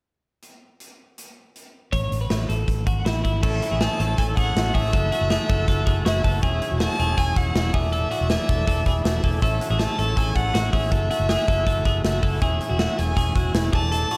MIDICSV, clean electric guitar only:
0, 0, Header, 1, 2, 480
1, 0, Start_track
1, 0, Key_signature, 3, "major"
1, 0, Tempo, 375235
1, 532, Time_signature, 4, 2, 24, 8
1, 18129, End_track
2, 0, Start_track
2, 0, Title_t, "Clean electric guitar"
2, 0, Program_c, 0, 27
2, 2462, Note_on_c, 0, 73, 84
2, 2803, Note_off_c, 0, 73, 0
2, 2828, Note_on_c, 0, 71, 57
2, 3167, Note_off_c, 0, 71, 0
2, 3183, Note_on_c, 0, 69, 61
2, 3638, Note_off_c, 0, 69, 0
2, 3667, Note_on_c, 0, 66, 71
2, 3899, Note_off_c, 0, 66, 0
2, 3904, Note_on_c, 0, 64, 68
2, 4128, Note_off_c, 0, 64, 0
2, 4144, Note_on_c, 0, 64, 65
2, 4382, Note_off_c, 0, 64, 0
2, 4387, Note_on_c, 0, 69, 91
2, 4727, Note_off_c, 0, 69, 0
2, 4750, Note_on_c, 0, 68, 72
2, 4859, Note_off_c, 0, 68, 0
2, 4874, Note_on_c, 0, 68, 80
2, 5113, Note_off_c, 0, 68, 0
2, 5113, Note_on_c, 0, 69, 79
2, 5337, Note_off_c, 0, 69, 0
2, 5353, Note_on_c, 0, 69, 89
2, 5587, Note_off_c, 0, 69, 0
2, 5592, Note_on_c, 0, 68, 80
2, 5831, Note_off_c, 0, 68, 0
2, 5831, Note_on_c, 0, 66, 88
2, 6062, Note_off_c, 0, 66, 0
2, 6067, Note_on_c, 0, 68, 74
2, 6301, Note_off_c, 0, 68, 0
2, 6306, Note_on_c, 0, 69, 84
2, 6543, Note_off_c, 0, 69, 0
2, 6548, Note_on_c, 0, 66, 84
2, 6779, Note_off_c, 0, 66, 0
2, 6784, Note_on_c, 0, 68, 84
2, 7020, Note_off_c, 0, 68, 0
2, 7025, Note_on_c, 0, 69, 79
2, 7250, Note_off_c, 0, 69, 0
2, 7265, Note_on_c, 0, 69, 92
2, 7492, Note_off_c, 0, 69, 0
2, 7497, Note_on_c, 0, 68, 75
2, 7737, Note_off_c, 0, 68, 0
2, 7742, Note_on_c, 0, 66, 86
2, 7980, Note_off_c, 0, 66, 0
2, 7985, Note_on_c, 0, 69, 76
2, 8222, Note_off_c, 0, 69, 0
2, 8227, Note_on_c, 0, 68, 105
2, 8587, Note_off_c, 0, 68, 0
2, 8587, Note_on_c, 0, 66, 81
2, 8694, Note_off_c, 0, 66, 0
2, 8709, Note_on_c, 0, 66, 84
2, 8943, Note_off_c, 0, 66, 0
2, 8948, Note_on_c, 0, 68, 76
2, 9163, Note_off_c, 0, 68, 0
2, 9179, Note_on_c, 0, 68, 103
2, 9422, Note_off_c, 0, 68, 0
2, 9422, Note_on_c, 0, 66, 77
2, 9656, Note_off_c, 0, 66, 0
2, 9656, Note_on_c, 0, 64, 88
2, 9896, Note_off_c, 0, 64, 0
2, 9901, Note_on_c, 0, 68, 82
2, 10131, Note_off_c, 0, 68, 0
2, 10136, Note_on_c, 0, 69, 100
2, 10368, Note_off_c, 0, 69, 0
2, 10373, Note_on_c, 0, 66, 77
2, 10615, Note_off_c, 0, 66, 0
2, 10623, Note_on_c, 0, 68, 76
2, 10862, Note_off_c, 0, 68, 0
2, 10862, Note_on_c, 0, 69, 71
2, 11087, Note_off_c, 0, 69, 0
2, 11103, Note_on_c, 0, 69, 92
2, 11339, Note_off_c, 0, 69, 0
2, 11344, Note_on_c, 0, 68, 74
2, 11587, Note_off_c, 0, 68, 0
2, 11587, Note_on_c, 0, 66, 83
2, 11816, Note_off_c, 0, 66, 0
2, 11821, Note_on_c, 0, 69, 66
2, 12043, Note_off_c, 0, 69, 0
2, 12058, Note_on_c, 0, 69, 95
2, 12394, Note_off_c, 0, 69, 0
2, 12414, Note_on_c, 0, 68, 73
2, 12513, Note_off_c, 0, 68, 0
2, 12528, Note_on_c, 0, 68, 86
2, 12770, Note_off_c, 0, 68, 0
2, 12775, Note_on_c, 0, 69, 82
2, 12997, Note_off_c, 0, 69, 0
2, 13012, Note_on_c, 0, 69, 93
2, 13250, Note_off_c, 0, 69, 0
2, 13250, Note_on_c, 0, 68, 77
2, 13480, Note_off_c, 0, 68, 0
2, 13485, Note_on_c, 0, 66, 88
2, 13720, Note_off_c, 0, 66, 0
2, 13725, Note_on_c, 0, 68, 79
2, 13967, Note_off_c, 0, 68, 0
2, 13967, Note_on_c, 0, 69, 91
2, 14202, Note_off_c, 0, 69, 0
2, 14207, Note_on_c, 0, 66, 74
2, 14441, Note_off_c, 0, 66, 0
2, 14446, Note_on_c, 0, 68, 82
2, 14683, Note_off_c, 0, 68, 0
2, 14689, Note_on_c, 0, 69, 76
2, 14908, Note_off_c, 0, 69, 0
2, 14924, Note_on_c, 0, 69, 87
2, 15162, Note_off_c, 0, 69, 0
2, 15168, Note_on_c, 0, 68, 74
2, 15408, Note_off_c, 0, 68, 0
2, 15408, Note_on_c, 0, 66, 84
2, 15636, Note_off_c, 0, 66, 0
2, 15641, Note_on_c, 0, 69, 74
2, 15884, Note_off_c, 0, 69, 0
2, 15889, Note_on_c, 0, 68, 101
2, 16226, Note_off_c, 0, 68, 0
2, 16240, Note_on_c, 0, 66, 75
2, 16348, Note_off_c, 0, 66, 0
2, 16363, Note_on_c, 0, 66, 84
2, 16605, Note_off_c, 0, 66, 0
2, 16605, Note_on_c, 0, 68, 77
2, 16827, Note_off_c, 0, 68, 0
2, 16842, Note_on_c, 0, 68, 87
2, 17082, Note_off_c, 0, 68, 0
2, 17087, Note_on_c, 0, 66, 70
2, 17324, Note_off_c, 0, 66, 0
2, 17324, Note_on_c, 0, 64, 87
2, 17553, Note_off_c, 0, 64, 0
2, 17558, Note_on_c, 0, 68, 81
2, 17797, Note_off_c, 0, 68, 0
2, 17803, Note_on_c, 0, 69, 96
2, 18045, Note_off_c, 0, 69, 0
2, 18053, Note_on_c, 0, 66, 74
2, 18129, Note_off_c, 0, 66, 0
2, 18129, End_track
0, 0, End_of_file